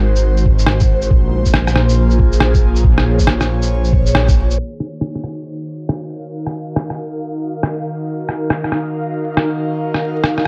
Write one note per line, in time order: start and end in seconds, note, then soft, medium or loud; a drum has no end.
0.00 1.10 G#1 medium
0.00 1.11 G#3 medium
0.00 1.70 D#4 medium
0.00 1.11 F#4 medium
0.00 1.69 A#4 medium
0.00 6.04 C5 medium
0.16 shaker soft
0.37 shaker soft
0.46 kick medium
0.59 shaker medium
0.66 cross-stick loud
0.80 kick loud
0.80 shaker soft
1.02 shaker soft
1.10 4.57 A#1 medium
1.10 5.35 A#3 medium
1.10 kick loud
1.30 4.59 F4 medium
1.46 kick medium
1.46 shaker medium
1.54 cross-stick loud
1.62 5.28 G#4 medium
1.67 cross-stick medium
1.67 shaker soft
1.76 cross-stick medium
1.89 shaker medium
2.10 shaker soft
2.19 kick medium
2.32 shaker medium
2.40 cross-stick medium
2.54 kick loud
2.54 shaker soft
2.69 6.25 C#5 medium
2.76 shaker medium
2.84 kick loud
2.98 cross-stick medium
3.19 kick medium
3.19 shaker medium
3.27 cross-stick loud
3.41 cross-stick medium
3.41 shaker soft
3.62 shaker medium
3.85 shaker soft
3.93 kick medium
4.06 shaker medium
4.15 cross-stick loud
4.28 kick loud
4.28 shaker soft
4.51 shaker medium
4.58 10.48 D#3 medium
4.74 10.48 D#4 medium
4.80 cross-stick medium
5.01 cross-stick medium
5.12 10.48 F#4 medium
5.12 cross-stick soft
5.24 cross-stick medium
5.65 10.48 F5 medium
5.82 10.48 A#4 medium
5.89 cross-stick medium
6.46 cross-stick medium
6.76 cross-stick loud
6.90 cross-stick soft
7.63 cross-stick medium
8.29 cross-stick medium
8.50 cross-stick medium
8.64 cross-stick soft
8.72 cross-stick medium
9.37 cross-stick loud
9.94 cross-stick medium
10.24 cross-stick medium
10.38 cross-stick soft